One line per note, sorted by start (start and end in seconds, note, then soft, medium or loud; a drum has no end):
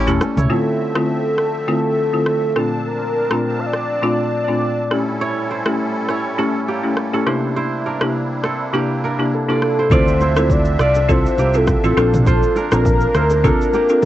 0.00 0.46 G3 medium
0.00 0.49 A3 medium
0.00 0.49 C#4 medium
0.00 0.10 E4 loud
0.00 0.75 G4 medium
0.07 0.18 E1 medium
0.07 0.21 A3 medium
0.07 0.21 C#4 medium
0.07 1.83 C#4 medium
0.07 0.21 E4 medium
0.07 0.21 G4 medium
0.07 1.40 A4 medium
0.07 shaker soft
0.21 cross-stick loud
0.21 low bongo medium
0.21 shaker medium
0.37 0.47 C#2 medium
0.37 1.95 E4 medium
0.37 1.52 C#5 medium
0.37 mid tom loud
0.37 shaker medium
0.50 0.92 D3 medium
0.50 2.54 D3 medium
0.50 2.54 F3 medium
0.50 0.92 A3 medium
0.50 2.54 A3 medium
0.50 0.92 C4 medium
0.50 4.87 C4 medium
0.50 0.92 E4 medium
0.50 0.92 F4 loud
0.50 2.88 A4 loud
0.50 2.54 E5 medium
0.95 1.09 D3 medium
0.95 1.09 A3 medium
0.95 1.09 C4 medium
0.95 1.09 E4 medium
0.95 1.10 F4 medium
0.95 cross-stick loud
1.38 cross-stick medium
1.68 1.84 D3 medium
1.68 1.84 A3 medium
1.68 1.84 C4 medium
1.68 1.84 E4 medium
1.68 1.84 F4 medium
2.13 2.27 D3 medium
2.13 2.27 A3 medium
2.13 2.27 C4 medium
2.13 2.27 E4 medium
2.13 2.27 F4 medium
2.26 cross-stick medium
2.56 2.72 A#2 medium
2.56 4.89 A#2 medium
2.56 4.89 F3 medium
2.56 2.72 A3 medium
2.56 2.72 C4 medium
2.56 4.89 D4 medium
2.56 2.73 D4 medium
2.56 2.73 F4 medium
2.56 4.89 A5 medium
2.56 cross-stick medium
2.86 3.61 A#4 loud
3.31 3.45 A#2 medium
3.31 3.45 A3 medium
3.31 3.45 C4 medium
3.31 3.45 D4 medium
3.31 3.45 F4 medium
3.31 cross-stick loud
3.60 3.67 F5 medium
3.66 4.43 D5 loud
3.73 cross-stick medium
4.02 4.19 A#2 medium
4.02 4.19 A3 medium
4.02 4.19 C4 medium
4.02 4.20 D4 medium
4.02 4.20 F4 loud
4.44 4.98 D5 medium
4.48 4.88 A#2 medium
4.48 4.88 A3 medium
4.48 4.88 C4 medium
4.48 4.88 D4 medium
4.48 4.88 F4 medium
4.91 7.24 A2 medium
4.91 9.87 G3 medium
4.91 5.18 A3 medium
4.91 7.24 C#4 medium
4.91 5.18 C#4 medium
4.91 7.24 E4 medium
4.91 5.18 E4 medium
4.91 5.19 G4 medium
4.91 7.24 A4 medium
4.91 cross-stick medium
5.21 5.51 E4 medium
5.21 5.57 C#5 loud
5.51 6.10 E4 medium
5.51 6.16 C5 medium
5.66 5.80 A3 medium
5.66 5.80 C#4 medium
5.66 5.80 E4 medium
5.66 5.80 G4 medium
5.66 cross-stick loud
6.09 7.27 E4 medium
6.09 7.24 C#5 medium
6.09 cross-stick medium
6.38 6.55 A3 medium
6.38 6.55 C#4 medium
6.38 7.14 C#4 medium
6.38 6.55 E4 medium
6.38 6.55 G4 medium
6.38 6.75 A4 medium
6.68 7.20 A#3 medium
6.68 8.10 G4 medium
6.84 6.97 A3 medium
6.84 6.97 C#4 medium
6.84 6.98 E4 medium
6.84 6.98 G4 medium
6.97 cross-stick medium
7.13 7.27 A3 medium
7.13 7.27 C#4 medium
7.13 7.33 C#4 medium
7.13 7.26 E4 medium
7.13 7.26 G4 medium
7.13 7.92 A4 medium
7.26 7.54 C3 medium
7.26 9.89 C3 medium
7.26 9.88 A#3 medium
7.26 7.54 A#3 medium
7.26 9.89 D4 medium
7.26 7.54 D4 medium
7.26 9.89 E4 medium
7.26 7.54 E4 medium
7.26 7.57 E4 medium
7.26 7.54 G4 medium
7.26 7.56 C5 medium
7.26 cross-stick medium
7.57 9.14 E4 medium
7.57 8.75 C5 loud
7.86 9.04 D4 medium
7.86 8.51 A#4 medium
8.01 8.15 C3 medium
8.01 8.15 A#3 medium
8.01 8.15 D4 medium
8.01 8.15 E4 medium
8.01 8.15 G4 medium
8.01 cross-stick loud
8.44 10.26 C4 medium
8.44 8.81 A4 medium
8.44 cross-stick loud
8.73 8.90 C3 medium
8.73 8.90 A#3 medium
8.73 10.68 A#3 medium
8.73 8.90 D4 medium
8.73 8.90 E4 medium
8.73 8.90 G4 medium
8.73 10.16 G4 medium
9.04 10.73 D4 medium
9.04 10.31 A#4 medium
9.19 9.33 C3 medium
9.19 9.33 A#3 medium
9.19 9.33 D4 medium
9.19 9.33 E4 medium
9.19 9.33 G4 medium
9.34 9.88 A4 medium
9.48 9.62 C3 medium
9.48 9.62 A#3 medium
9.48 9.62 D4 medium
9.48 9.62 E4 medium
9.48 9.86 F4 medium
9.48 9.62 G4 medium
9.48 9.92 D5 medium
9.62 cross-stick medium
9.79 9.99 E4 medium
9.79 10.21 C5 medium
9.90 10.75 D2 loud
9.90 11.95 D3 medium
9.90 14.05 F3 medium
9.90 10.33 C4 medium
9.90 11.95 C4 medium
9.90 11.95 D4 medium
9.90 10.33 E4 medium
9.90 10.33 F4 medium
9.90 10.28 F4 medium
9.90 10.33 A4 loud
9.90 10.53 C5 loud
9.90 10.80 D5 loud
9.90 11.95 E5 medium
9.90 kick loud
9.90 low conga medium
9.90 shaker medium
10.08 shaker medium
10.21 10.87 E4 medium
10.21 11.40 C5 medium
10.21 low bongo medium
10.21 shaker medium
10.36 10.50 C4 medium
10.36 10.51 E4 medium
10.36 10.51 F4 medium
10.36 10.51 A4 medium
10.36 cross-stick loud
10.36 low bongo medium
10.36 shaker loud
10.50 10.80 D5 loud
10.50 kick medium
10.50 high bongo medium
10.50 low conga medium
10.50 shaker medium
10.65 shaker medium
10.79 11.25 C2 loud
10.79 11.98 F4 medium
10.79 11.91 D5 medium
10.79 11.12 D5 loud
10.79 cross-stick loud
10.79 high bongo medium
10.79 shaker medium
10.95 high bongo medium
10.95 shaker medium
11.09 11.25 C4 loud
11.09 11.85 C4 medium
11.09 11.25 E4 medium
11.09 11.25 F4 medium
11.09 11.26 A4 loud
11.09 11.46 A4 medium
11.09 11.58 C5 medium
11.09 kick loud
11.09 low conga medium
11.09 shaker medium
11.26 shaker medium
11.38 11.74 C2 medium
11.38 11.91 A#3 medium
11.38 12.80 G4 medium
11.38 low bongo medium
11.38 shaker medium
11.54 11.68 C4 medium
11.54 11.68 E4 medium
11.54 11.68 F4 medium
11.54 11.68 A4 medium
11.54 12.27 A4 loud
11.54 shaker medium
11.67 kick loud
11.67 cross-stick loud
11.67 high bongo medium
11.67 shaker medium
11.84 11.94 A1 medium
11.84 11.96 C4 medium
11.84 13.65 C4 medium
11.84 11.98 E4 medium
11.84 11.96 F4 medium
11.84 11.96 A4 medium
11.84 12.63 A4 medium
11.84 shaker soft
11.97 12.42 A#1 medium
11.97 14.05 A#3 medium
11.97 12.24 C4 medium
11.97 12.24 D4 medium
11.97 14.05 D4 medium
11.97 12.24 F4 medium
11.97 12.28 F4 medium
11.97 12.25 A4 loud
11.97 12.27 C5 medium
11.97 cross-stick loud
11.97 low bongo medium
11.97 shaker soft
12.14 mid tom loud
12.14 shaker medium
12.25 13.22 F4 medium
12.25 12.70 A4 loud
12.25 13.15 C5 loud
12.25 kick loud
12.25 low conga medium
12.25 shaker medium
12.43 shaker medium
12.56 13.45 D4 medium
12.56 13.51 A#4 medium
12.56 low bongo medium
12.56 shaker medium
12.72 13.05 A#1 medium
12.72 12.86 C4 medium
12.72 12.86 D4 medium
12.72 12.86 F4 medium
12.72 12.86 A4 medium
12.72 14.05 A#4 loud
12.72 cross-stick loud
12.72 low bongo medium
12.72 shaker loud
12.85 kick medium
12.85 high bongo medium
12.85 low conga medium
12.85 shaker medium
13.01 shaker medium
13.15 13.50 D2 loud
13.15 14.05 E4 medium
13.15 14.05 C5 medium
13.15 cross-stick loud
13.15 high bongo medium
13.15 shaker medium
13.30 high bongo medium
13.30 shaker medium
13.44 13.61 C4 medium
13.44 13.61 D4 medium
13.44 14.05 D4 medium
13.44 13.61 F4 medium
13.44 13.61 A4 loud
13.44 13.81 A4 medium
13.44 kick loud
13.44 low conga medium
13.44 shaker medium
13.61 shaker medium
13.73 14.05 A#3 medium
13.73 14.05 G4 medium
13.73 low bongo medium
13.73 shaker medium
13.89 14.03 C4 medium
13.89 14.03 D4 medium
13.89 14.04 F4 medium
13.89 14.04 A4 medium
13.89 shaker medium
14.02 high bongo medium